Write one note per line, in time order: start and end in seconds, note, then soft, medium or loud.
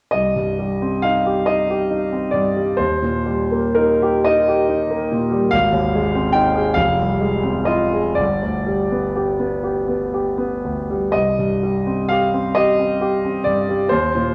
0.11 2.77 C2 soft
0.11 1.03 D#5 medium
0.36 0.73 G2 soft
0.59 0.95 G3 soft
0.82 1.18 C4 soft
1.02 1.39 D#4 soft
1.02 1.47 F5 medium
1.26 1.61 G4 soft
1.46 1.83 D#4 soft
1.46 2.35 D#5 medium
1.70 2.05 G4 soft
1.91 2.26 D#4 soft
2.12 2.48 C4 soft
2.31 2.70 G2 soft
2.31 2.78 D5 medium
2.56 2.79 G3 soft
2.77 5.48 D#2 soft
2.77 3.76 C5 medium
3.02 3.42 A#2 soft
3.26 3.67 G3 soft
3.52 3.93 A#3 soft
3.75 4.16 D#4 soft
3.75 4.25 A#4 medium
4.02 4.40 G4 soft
4.25 4.62 D#4 soft
4.25 5.52 D#5 medium
4.48 4.82 G4 soft
4.69 5.03 D#4 soft
4.90 5.23 A#3 soft
5.12 5.44 A#2 soft
5.32 5.52 G3 soft
5.51 6.73 G#1 soft
5.51 6.34 F5 medium
5.72 6.05 D#2 soft
5.95 6.27 G#3 soft
6.15 6.48 C4 soft
6.33 6.68 D#4 soft
6.33 6.76 G5 medium
6.55 6.77 G#4 soft
6.74 8.15 F1 medium
6.74 7.68 F5 medium
6.99 7.36 C2 soft
7.21 7.59 G#3 soft
7.43 7.83 C4 soft
7.65 8.08 F4 soft
7.65 8.17 D#5 medium
7.92 8.18 G#4 soft
8.15 11.09 G1 soft
8.15 10.62 D5 medium
8.42 8.82 D2 soft
8.67 9.07 G3 soft
8.92 9.31 B3 soft
9.16 9.55 G4 soft
9.39 9.79 B3 soft
9.63 10.03 G4 soft
9.88 10.28 B3 soft
10.14 10.54 G4 soft
10.38 10.79 B3 soft
10.64 11.04 D2 soft
10.90 11.14 G3 soft
11.12 13.86 C2 soft
11.12 12.08 D#5 medium
11.39 11.77 G2 soft
11.63 12.00 G3 soft
11.87 12.23 C4 soft
12.08 12.47 G4 soft
12.08 12.54 F5 medium
12.34 12.69 C4 soft
12.55 12.92 G4 soft
12.55 13.45 D#5 medium
12.79 13.14 C4 soft
13.01 13.36 G4 soft
13.24 13.59 C4 soft
13.44 13.82 G2 soft
13.44 13.89 D5 medium
13.69 13.91 G3 soft
13.89 14.35 D#2 soft
13.89 14.35 C5 medium
14.15 14.35 A#2 soft